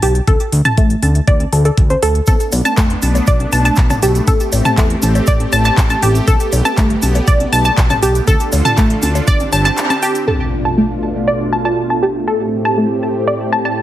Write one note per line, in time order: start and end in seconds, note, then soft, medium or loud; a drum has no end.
0.02 0.20 B1 medium
0.02 0.08 G4 medium
0.02 open hi-hat loud
0.15 closed hi-hat soft
0.27 0.37 D2 medium
0.27 0.33 A4 medium
0.27 kick loud
0.27 closed hi-hat medium
0.27 high conga medium
0.40 closed hi-hat soft
0.52 0.62 D2 medium
0.52 open hi-hat loud
0.65 0.68 A5 medium
0.65 closed hi-hat soft
0.65 mid tom medium
0.65 high conga medium
0.77 0.96 A1 medium
0.77 0.86 A3 medium
0.77 kick loud
0.77 closed hi-hat medium
0.90 closed hi-hat soft
1.02 1.20 D2 medium
1.02 open hi-hat medium
1.02 high conga medium
1.15 closed hi-hat soft
1.27 1.45 D2 medium
1.27 1.33 D5 loud
1.27 kick loud
1.27 closed hi-hat medium
1.40 closed hi-hat soft
1.40 high conga medium
1.52 1.70 D2 medium
1.52 1.58 A4 medium
1.52 open hi-hat loud
1.65 1.71 A4 medium
1.65 closed hi-hat soft
1.77 1.95 D2 loud
1.77 kick loud
1.77 closed hi-hat medium
1.90 1.98 C5 medium
1.90 closed hi-hat soft
1.90 high conga medium
2.02 2.20 D2 medium
2.02 2.06 A4 loud
2.02 open hi-hat loud
2.15 closed hi-hat soft
2.27 2.37 B1 medium
2.27 8.24 A3 medium
2.27 4.26 B3 medium
2.27 4.25 D4 loud
2.27 2.33 A4 medium
2.27 kick loud
2.27 closed hi-hat medium
2.27 high conga medium
2.27 shaker soft
2.40 closed hi-hat soft
2.40 shaker soft
2.52 2.62 B1 medium
2.52 open hi-hat loud
2.52 high bongo medium
2.52 shaker medium
2.65 2.68 A5 medium
2.65 closed hi-hat soft
2.65 high conga medium
2.65 shaker soft
2.77 2.96 F1 medium
2.77 2.86 A3 medium
2.77 kick loud
2.77 clap loud
2.77 closed hi-hat medium
2.77 shaker soft
2.90 closed hi-hat soft
3.02 3.20 B1 medium
3.02 open hi-hat loud
3.02 high conga medium
3.02 shaker medium
3.15 closed hi-hat soft
3.15 high bongo medium
3.15 shaker soft
3.27 3.46 B1 medium
3.27 3.33 D5 loud
3.27 kick loud
3.27 closed hi-hat medium
3.27 shaker medium
3.40 closed hi-hat soft
3.40 high conga medium
3.52 3.70 B1 medium
3.52 3.56 A5 loud
3.52 open hi-hat loud
3.52 shaker medium
3.65 3.68 A5 loud
3.65 closed hi-hat soft
3.65 shaker soft
3.76 3.96 B1 medium
3.76 kick loud
3.76 clap loud
3.76 closed hi-hat medium
3.76 shaker soft
3.90 3.96 A5 medium
3.90 closed hi-hat soft
3.90 mid tom medium
3.90 high bongo medium
3.90 high conga medium
3.90 shaker soft
4.02 4.21 B1 medium
4.02 4.08 G4 medium
4.02 open hi-hat loud
4.02 shaker medium
4.15 closed hi-hat soft
4.15 shaker soft
4.27 4.37 A1 loud
4.27 6.26 C4 medium
4.27 8.24 G4 medium
4.27 4.33 A4 medium
4.27 kick loud
4.27 closed hi-hat medium
4.27 high conga medium
4.27 shaker medium
4.40 closed hi-hat soft
4.40 shaker soft
4.53 4.62 A1 medium
4.53 open hi-hat medium
4.53 high bongo medium
4.53 shaker medium
4.65 4.68 A5 medium
4.65 closed hi-hat soft
4.65 mid tom medium
4.65 high conga medium
4.65 shaker soft
4.78 4.96 E2 medium
4.78 4.86 A3 medium
4.78 kick loud
4.78 clap loud
4.78 closed hi-hat medium
4.78 shaker medium
4.90 closed hi-hat soft
5.02 5.21 A1 medium
5.02 open hi-hat medium
5.02 high conga medium
5.02 shaker medium
5.15 closed hi-hat soft
5.15 high bongo medium
5.15 shaker soft
5.27 5.46 A1 medium
5.27 5.33 D5 loud
5.27 kick loud
5.27 closed hi-hat medium
5.27 shaker medium
5.40 closed hi-hat soft
5.40 high conga medium
5.52 5.71 A1 medium
5.52 5.56 A5 loud
5.52 open hi-hat medium
5.52 high bongo medium
5.52 shaker medium
5.65 5.68 A5 loud
5.65 clap soft
5.65 closed hi-hat soft
5.65 shaker soft
5.78 5.96 A1 loud
5.78 kick loud
5.78 clap loud
5.78 closed hi-hat medium
5.78 shaker soft
5.90 5.96 A5 medium
5.90 closed hi-hat soft
5.90 high conga medium
5.90 shaker soft
6.03 6.21 A1 medium
6.03 6.08 G4 medium
6.03 open hi-hat loud
6.03 shaker medium
6.15 closed hi-hat soft
6.15 shaker soft
6.28 6.37 B1 loud
6.28 8.26 B3 medium
6.28 6.33 A4 loud
6.28 kick loud
6.28 closed hi-hat medium
6.28 high conga medium
6.28 shaker soft
6.40 closed hi-hat soft
6.40 shaker soft
6.52 6.62 B1 medium
6.52 open hi-hat loud
6.52 high bongo medium
6.52 shaker medium
6.65 6.68 A5 loud
6.65 closed hi-hat soft
6.65 high conga medium
6.65 shaker soft
6.77 6.96 G1 medium
6.77 6.86 A3 medium
6.77 kick loud
6.77 clap loud
6.77 closed hi-hat medium
6.77 shaker soft
6.90 closed hi-hat soft
7.02 7.21 B1 medium
7.02 open hi-hat medium
7.02 high conga medium
7.02 shaker medium
7.14 closed hi-hat soft
7.14 high bongo medium
7.14 shaker soft
7.27 7.46 B1 medium
7.27 7.33 D5 loud
7.27 kick loud
7.27 closed hi-hat medium
7.27 shaker soft
7.40 closed hi-hat soft
7.40 high conga medium
7.53 7.71 B1 medium
7.53 7.56 A5 loud
7.53 open hi-hat medium
7.53 shaker medium
7.65 7.68 A5 loud
7.65 closed hi-hat soft
7.65 shaker soft
7.78 7.96 B1 medium
7.78 kick loud
7.78 clap loud
7.78 closed hi-hat medium
7.78 shaker soft
7.90 7.96 A5 medium
7.90 closed hi-hat soft
7.90 mid tom medium
7.90 high bongo medium
7.90 high conga medium
7.90 shaker soft
8.03 8.21 B1 medium
8.03 8.08 G4 medium
8.03 open hi-hat loud
8.03 shaker medium
8.15 closed hi-hat soft
8.15 shaker soft
8.27 8.37 D2 loud
8.27 9.27 D3 medium
8.27 10.26 D4 medium
8.27 9.27 F4 medium
8.27 8.33 A4 loud
8.27 9.27 A4 medium
8.27 kick loud
8.27 closed hi-hat medium
8.27 high conga medium
8.27 shaker medium
8.40 closed hi-hat soft
8.40 shaker soft
8.52 8.62 D2 medium
8.52 open hi-hat loud
8.52 high bongo medium
8.52 shaker medium
8.65 8.68 A5 medium
8.65 closed hi-hat soft
8.65 mid tom medium
8.65 high conga medium
8.65 shaker soft
8.77 8.96 A1 medium
8.77 8.86 A3 medium
8.77 kick loud
8.77 clap loud
8.77 closed hi-hat medium
8.77 shaker medium
8.90 closed hi-hat soft
9.02 9.21 D2 medium
9.02 open hi-hat loud
9.02 high conga medium
9.02 shaker medium
9.15 closed hi-hat soft
9.15 high bongo medium
9.15 shaker soft
9.27 9.46 G1 loud
9.27 10.27 C4 medium
9.27 10.27 G4 medium
9.27 9.33 D5 loud
9.27 kick loud
9.27 closed hi-hat medium
9.27 shaker soft
9.40 closed hi-hat soft
9.40 high conga medium
9.40 shaker soft
9.53 9.71 G1 medium
9.53 9.56 A5 loud
9.53 open hi-hat loud
9.53 high bongo medium
9.53 shaker medium
9.65 9.68 A5 loud
9.65 clap soft
9.65 closed hi-hat soft
9.65 shaker soft
9.77 clap loud
9.77 closed hi-hat medium
9.77 shaker soft
9.90 9.96 A5 medium
9.90 closed hi-hat soft
9.90 high conga medium
9.90 shaker soft
10.03 10.08 G4 medium
10.03 open hi-hat loud
10.03 shaker medium
10.15 closed hi-hat soft
10.15 shaker soft
10.28 12.26 B2 medium
10.28 13.82 A3 medium
10.28 12.26 D4 medium
10.28 12.26 F4 medium
10.28 10.33 A4 medium
10.28 impact medium
10.65 10.68 A5 medium
10.78 10.86 A3 medium
11.28 11.33 D5 loud
11.53 11.56 A5 loud
11.65 11.68 A5 medium
11.90 11.96 A5 medium
12.03 12.08 G4 medium
12.28 13.82 A2 medium
12.28 13.82 C4 medium
12.28 13.82 G4 medium
12.28 12.33 A4 medium
12.65 12.68 A5 medium
12.78 12.86 A3 medium
13.27 13.33 D5 medium
13.53 13.56 A5 loud
13.65 13.68 A5 loud